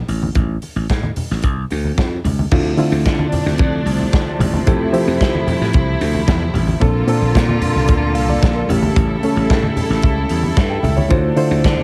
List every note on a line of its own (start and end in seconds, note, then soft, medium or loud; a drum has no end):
0.08 0.28 A1 medium
0.08 open hi-hat medium
0.08 muted conga soft
0.23 high conga medium
0.35 0.56 A1 loud
0.35 kick loud
0.35 closed hi-hat medium
0.35 muted conga soft
0.35 low conga medium
0.62 open hi-hat medium
0.62 muted conga soft
0.76 0.86 A1 medium
0.90 1.10 A2 loud
0.90 kick loud
0.90 snare loud
0.90 closed hi-hat medium
0.90 muted conga soft
1.03 high conga medium
1.16 open hi-hat medium
1.16 low conga medium
1.31 1.44 A1 medium
1.31 snare soft
1.42 1.64 C2 loud
1.42 kick loud
1.42 closed hi-hat medium
1.42 muted conga soft
1.70 1.91 D2 medium
1.70 open hi-hat medium
1.70 muted conga soft
1.84 high conga medium
1.98 2.18 F2 medium
1.98 kick loud
1.98 snare loud
1.98 closed hi-hat medium
2.24 2.44 C#2 medium
2.24 open hi-hat medium
2.24 muted conga soft
2.24 low conga medium
2.39 high conga medium
2.51 2.72 D2 loud
2.51 6.78 C3 medium
2.51 2.69 D3 medium
2.51 6.78 F3 medium
2.51 2.69 A3 medium
2.51 6.78 A3 medium
2.51 2.70 C4 medium
2.51 4.65 D4 loud
2.51 2.70 E4 medium
2.51 2.70 F4 loud
2.51 kick loud
2.51 crash loud
2.51 low conga medium
2.77 3.49 D3 medium
2.77 3.50 A3 medium
2.77 3.50 C4 medium
2.77 3.50 E4 medium
2.77 3.50 F4 medium
2.77 open hi-hat medium
2.77 muted conga soft
2.92 3.02 D2 loud
3.06 3.26 D3 loud
3.06 kick loud
3.06 snare loud
3.06 closed hi-hat medium
3.19 high conga medium
3.32 open hi-hat medium
3.32 muted conga soft
3.32 low conga medium
3.46 3.56 D2 medium
3.46 snare soft
3.58 3.80 F2 medium
3.58 kick loud
3.58 closed hi-hat medium
3.86 4.06 C2 loud
3.86 open hi-hat medium
3.99 high conga medium
4.13 kick loud
4.13 snare loud
4.13 closed hi-hat medium
4.39 4.60 A1 loud
4.39 open hi-hat medium
4.39 low conga medium
4.54 high conga medium
4.66 4.87 F2 loud
4.66 4.84 F3 medium
4.66 4.84 C4 medium
4.66 4.85 E4 medium
4.66 6.80 E4 loud
4.66 4.85 G4 medium
4.66 4.85 A4 medium
4.66 kick loud
4.66 closed hi-hat medium
4.66 muted conga soft
4.66 low conga medium
4.92 5.64 F3 medium
4.92 5.64 C4 medium
4.92 5.64 E4 medium
4.92 5.65 G4 medium
4.92 5.65 C5 medium
4.92 open hi-hat medium
4.92 muted conga soft
5.07 5.17 F2 medium
5.21 5.41 F3 loud
5.21 kick loud
5.21 snare loud
5.21 closed hi-hat medium
5.34 high conga medium
5.47 open hi-hat medium
5.47 low conga medium
5.61 5.71 A2 medium
5.61 snare soft
5.73 5.94 C2 loud
5.73 kick loud
5.73 closed hi-hat medium
5.73 muted conga soft
6.01 6.21 D2 medium
6.01 open hi-hat medium
6.15 high conga medium
6.28 6.48 E2 loud
6.28 kick loud
6.28 snare loud
6.28 closed hi-hat medium
6.28 muted conga soft
6.54 6.74 A1 loud
6.54 open hi-hat medium
6.54 muted conga soft
6.54 low conga medium
6.67 high conga medium
6.80 7.02 A#1 loud
6.80 6.99 A#2 medium
6.80 8.67 D3 medium
6.80 6.99 A#3 medium
6.80 8.67 A#3 medium
6.80 6.99 C4 medium
6.80 6.99 D4 medium
6.80 8.67 F4 loud
6.80 11.83 A4 medium
6.80 6.99 A4 loud
6.80 kick loud
6.80 closed hi-hat medium
6.80 muted conga soft
6.80 low conga medium
7.07 7.79 A#2 medium
7.07 7.79 A#3 medium
7.07 7.79 C4 medium
7.07 7.79 D4 medium
7.07 7.80 A4 medium
7.07 open hi-hat medium
7.22 7.32 A#1 medium
7.35 7.55 A#2 loud
7.35 kick loud
7.35 snare loud
7.35 closed hi-hat medium
7.35 muted conga soft
7.49 high conga medium
7.61 open hi-hat medium
7.61 low conga medium
7.76 7.89 C2 medium
7.76 snare soft
7.88 8.15 D2 loud
7.88 kick loud
7.88 closed hi-hat medium
7.88 muted conga soft
8.15 8.35 C2 loud
8.15 8.28 F5 medium
8.15 open hi-hat medium
8.28 8.55 D5 medium
8.28 high conga medium
8.42 8.63 A#1 loud
8.42 kick loud
8.42 snare loud
8.42 closed hi-hat medium
8.42 muted conga soft
8.56 8.81 A#4 medium
8.68 8.89 A1 loud
8.68 11.09 C#3 medium
8.68 11.09 G3 medium
8.68 9.11 A3 medium
8.68 9.12 C#4 medium
8.68 11.09 E4 medium
8.68 9.12 G4 medium
8.68 open hi-hat medium
8.68 low conga medium
8.83 high conga medium
8.96 9.16 A1 loud
8.96 kick loud
8.96 closed hi-hat medium
8.96 muted conga soft
8.96 low conga medium
9.23 9.94 A3 medium
9.23 9.95 C#4 medium
9.23 9.95 A4 medium
9.23 open hi-hat medium
9.23 muted conga soft
9.36 9.46 A1 medium
9.50 9.70 A2 loud
9.50 kick loud
9.50 snare loud
9.50 closed hi-hat medium
9.63 high conga medium
9.76 open hi-hat medium
9.76 muted conga soft
9.76 low conga medium
9.90 10.00 A1 medium
9.90 snare soft
10.02 10.23 C#2 loud
10.02 kick loud
10.02 closed hi-hat medium
10.02 muted conga soft
10.29 10.50 E2 loud
10.29 open hi-hat medium
10.43 high conga medium
10.57 10.77 G2 loud
10.57 kick loud
10.57 snare loud
10.57 closed hi-hat medium
10.70 10.83 G5 medium
10.83 11.04 C#2 medium
10.83 10.96 E5 medium
10.83 open hi-hat medium
10.83 muted conga soft
10.83 low conga medium
10.97 11.22 C#5 medium
10.97 high conga medium
11.08 11.30 D2 loud
11.08 11.83 C3 medium
11.08 11.27 D3 medium
11.08 11.83 F3 medium
11.08 11.28 A3 medium
11.08 11.83 D4 loud
11.08 11.28 E4 medium
11.08 11.28 F4 medium
11.08 11.28 C5 loud
11.08 kick loud
11.08 closed hi-hat medium
11.08 muted conga soft
11.08 low conga medium
11.36 11.83 D3 medium
11.36 11.83 A3 medium
11.36 11.83 E4 medium
11.36 11.83 F4 medium
11.36 11.83 C5 loud
11.36 open hi-hat medium
11.51 11.61 D2 medium
11.64 11.83 D3 loud
11.64 kick loud
11.64 snare loud
11.64 closed hi-hat medium
11.64 muted conga soft
11.77 high conga medium